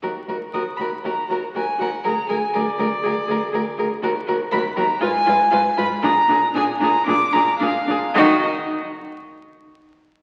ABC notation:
X:1
M:4/4
L:1/8
Q:1/4=119
K:Ebm
V:1 name="Violin"
z2 e' c' b b a g | b a =d4- d z | z2 c' b a3 c' | b2 a b =d' b f2 |
e z6 z |]
V:2 name="Violin"
B B B B B B B B | B B B B B B B B | B B B B c c c c | A A A A A A A A |
G z6 z |]
V:3 name="Viola"
G G G G G G G G | A A A A A A A A | G G G G F F F F | =D D D D D D D D |
E z6 z |]
V:4 name="Cello" clef=bass
E,, E,, E,, E,, E,, E,, E,, E,, | =D,, D,, D,, D,, D,, D,, D,, D,, | E,, E,, E,, E,, A,, A,, A,, A,, | B,, B,, B,, B,, B,, B,, B,, B,, |
E, z6 z |]